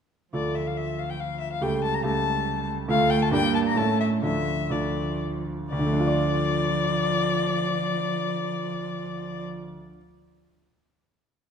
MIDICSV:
0, 0, Header, 1, 4, 480
1, 0, Start_track
1, 0, Key_signature, -1, "minor"
1, 0, Tempo, 426439
1, 398, Time_signature, 3, 2, 24, 8
1, 3751, Tempo, 453858
1, 4711, Tempo, 491803
1, 11799, End_track
2, 0, Start_track
2, 0, Title_t, "Violin"
2, 0, Program_c, 0, 40
2, 388, Note_on_c, 0, 74, 52
2, 623, Note_on_c, 0, 76, 50
2, 640, Note_off_c, 0, 74, 0
2, 759, Note_on_c, 0, 77, 49
2, 776, Note_off_c, 0, 76, 0
2, 874, Note_on_c, 0, 76, 58
2, 891, Note_off_c, 0, 77, 0
2, 1116, Note_on_c, 0, 77, 52
2, 1133, Note_off_c, 0, 76, 0
2, 1237, Note_on_c, 0, 79, 52
2, 1254, Note_off_c, 0, 77, 0
2, 1354, Note_on_c, 0, 77, 58
2, 1370, Note_off_c, 0, 79, 0
2, 1573, Note_off_c, 0, 77, 0
2, 1580, Note_on_c, 0, 76, 56
2, 1707, Note_off_c, 0, 76, 0
2, 1719, Note_on_c, 0, 77, 54
2, 1827, Note_on_c, 0, 79, 69
2, 1844, Note_off_c, 0, 77, 0
2, 2067, Note_off_c, 0, 79, 0
2, 2073, Note_on_c, 0, 81, 70
2, 2191, Note_on_c, 0, 82, 71
2, 2208, Note_off_c, 0, 81, 0
2, 2300, Note_off_c, 0, 82, 0
2, 2307, Note_on_c, 0, 81, 81
2, 3009, Note_off_c, 0, 81, 0
2, 3268, Note_on_c, 0, 77, 93
2, 3495, Note_on_c, 0, 79, 95
2, 3512, Note_off_c, 0, 77, 0
2, 3628, Note_on_c, 0, 81, 89
2, 3645, Note_off_c, 0, 79, 0
2, 3739, Note_off_c, 0, 81, 0
2, 3746, Note_on_c, 0, 79, 101
2, 3977, Note_off_c, 0, 79, 0
2, 3983, Note_on_c, 0, 81, 80
2, 4030, Note_off_c, 0, 81, 0
2, 4113, Note_on_c, 0, 82, 80
2, 4220, Note_on_c, 0, 81, 88
2, 4236, Note_off_c, 0, 82, 0
2, 4459, Note_off_c, 0, 81, 0
2, 4465, Note_on_c, 0, 76, 67
2, 4550, Note_off_c, 0, 76, 0
2, 4713, Note_on_c, 0, 76, 74
2, 5178, Note_on_c, 0, 74, 56
2, 5193, Note_off_c, 0, 76, 0
2, 5661, Note_off_c, 0, 74, 0
2, 6151, Note_on_c, 0, 74, 88
2, 9774, Note_off_c, 0, 74, 0
2, 11799, End_track
3, 0, Start_track
3, 0, Title_t, "Grand piano"
3, 0, Program_c, 1, 0
3, 371, Note_on_c, 1, 38, 36
3, 377, Note_on_c, 1, 57, 30
3, 379, Note_on_c, 1, 65, 32
3, 385, Note_on_c, 1, 69, 30
3, 601, Control_c, 1, 64, 127
3, 1782, Note_off_c, 1, 38, 0
3, 1785, Note_off_c, 1, 57, 0
3, 1786, Note_off_c, 1, 65, 0
3, 1789, Note_off_c, 1, 69, 0
3, 1814, Note_on_c, 1, 37, 45
3, 1816, Note_on_c, 1, 57, 39
3, 1825, Note_on_c, 1, 67, 38
3, 1828, Note_on_c, 1, 69, 37
3, 1860, Control_c, 1, 64, 0
3, 2072, Control_c, 1, 64, 127
3, 2271, Note_off_c, 1, 37, 0
3, 2278, Note_off_c, 1, 57, 0
3, 2286, Note_off_c, 1, 67, 0
3, 2288, Note_on_c, 1, 37, 50
3, 2290, Note_off_c, 1, 69, 0
3, 2295, Note_on_c, 1, 57, 43
3, 2302, Note_on_c, 1, 67, 43
3, 2307, Note_on_c, 1, 69, 41
3, 3225, Note_off_c, 1, 37, 0
3, 3229, Note_off_c, 1, 57, 0
3, 3232, Note_off_c, 1, 67, 0
3, 3235, Note_off_c, 1, 69, 0
3, 3244, Note_on_c, 1, 38, 60
3, 3248, Note_on_c, 1, 57, 54
3, 3254, Note_on_c, 1, 65, 49
3, 3261, Note_on_c, 1, 69, 50
3, 3290, Control_c, 1, 64, 0
3, 3466, Control_c, 1, 64, 127
3, 3725, Note_off_c, 1, 38, 0
3, 3728, Note_off_c, 1, 57, 0
3, 3730, Note_on_c, 1, 43, 65
3, 3731, Note_off_c, 1, 65, 0
3, 3734, Note_off_c, 1, 69, 0
3, 3734, Note_on_c, 1, 58, 52
3, 3742, Note_on_c, 1, 62, 55
3, 3747, Note_on_c, 1, 67, 49
3, 3774, Control_c, 1, 64, 0
3, 3963, Control_c, 1, 64, 127
3, 4193, Note_on_c, 1, 45, 52
3, 4196, Note_off_c, 1, 43, 0
3, 4198, Note_off_c, 1, 58, 0
3, 4200, Note_on_c, 1, 57, 45
3, 4202, Note_off_c, 1, 62, 0
3, 4204, Note_off_c, 1, 67, 0
3, 4208, Note_on_c, 1, 61, 41
3, 4210, Note_on_c, 1, 64, 43
3, 4242, Control_c, 1, 64, 0
3, 4440, Control_c, 1, 64, 127
3, 4675, Note_off_c, 1, 57, 0
3, 4683, Note_off_c, 1, 45, 0
3, 4686, Note_on_c, 1, 38, 45
3, 4690, Note_off_c, 1, 61, 0
3, 4691, Note_on_c, 1, 57, 39
3, 4692, Note_off_c, 1, 64, 0
3, 4699, Note_on_c, 1, 62, 39
3, 4704, Note_on_c, 1, 65, 36
3, 4733, Control_c, 1, 64, 0
3, 4886, Control_c, 1, 64, 127
3, 5142, Note_off_c, 1, 38, 0
3, 5147, Note_off_c, 1, 57, 0
3, 5152, Note_off_c, 1, 62, 0
3, 5156, Note_on_c, 1, 38, 44
3, 5158, Note_off_c, 1, 65, 0
3, 5161, Note_on_c, 1, 57, 37
3, 5166, Note_on_c, 1, 62, 34
3, 5172, Note_on_c, 1, 65, 36
3, 6110, Note_off_c, 1, 38, 0
3, 6113, Note_off_c, 1, 57, 0
3, 6116, Note_off_c, 1, 62, 0
3, 6119, Note_off_c, 1, 65, 0
3, 6155, Note_on_c, 1, 38, 57
3, 6172, Control_c, 1, 64, 0
3, 6225, Note_on_c, 1, 50, 55
3, 6292, Note_on_c, 1, 57, 52
3, 6328, Control_c, 1, 64, 127
3, 6360, Note_on_c, 1, 62, 55
3, 6427, Note_on_c, 1, 65, 58
3, 6498, Note_on_c, 1, 74, 59
3, 9056, Control_c, 1, 64, 0
3, 10089, Note_off_c, 1, 38, 0
3, 10158, Note_off_c, 1, 50, 0
3, 10226, Note_off_c, 1, 57, 0
3, 10294, Note_off_c, 1, 62, 0
3, 10361, Note_off_c, 1, 65, 0
3, 10432, Note_off_c, 1, 74, 0
3, 11799, End_track
4, 0, Start_track
4, 0, Title_t, "Cello"
4, 0, Program_c, 2, 42
4, 385, Note_on_c, 2, 53, 38
4, 1788, Note_off_c, 2, 53, 0
4, 1832, Note_on_c, 2, 55, 47
4, 3219, Note_off_c, 2, 55, 0
4, 3270, Note_on_c, 2, 57, 64
4, 3734, Note_on_c, 2, 58, 62
4, 3750, Note_off_c, 2, 57, 0
4, 4218, Note_on_c, 2, 57, 63
4, 4234, Note_off_c, 2, 58, 0
4, 4706, Note_on_c, 2, 53, 51
4, 4721, Note_off_c, 2, 57, 0
4, 5179, Note_off_c, 2, 53, 0
4, 5183, Note_on_c, 2, 53, 46
4, 5913, Note_off_c, 2, 53, 0
4, 6151, Note_on_c, 2, 53, 73
4, 9774, Note_off_c, 2, 53, 0
4, 11799, End_track
0, 0, End_of_file